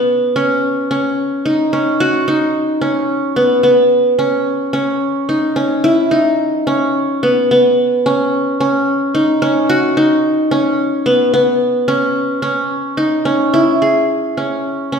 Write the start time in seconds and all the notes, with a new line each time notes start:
Already playing: B3 C#4
0.36 C#4
0.91 C#4
1.46 D#4
1.73 C#4
2.00 F#4
2.28 D#4
2.81 C#4
3.36 B3
3.63 B3
4.19 C#4
4.73 C#4
5.29 D#4
5.56 C#4
5.84 E4
6.11 D#4
6.67 C#4
7.23 B3
7.51 B3
8.06 C#4
8.60 C#4
9.15 D#4
9.42 C#4
9.69 F#4
9.97 D#4
10.51 C#4
11.06 B3
11.34 B3
11.88 C#4
12.42 C#4
12.97 D#4
13.25 C#4
13.54 E4
13.82 G#4
14.37 C#4
14.92 C#4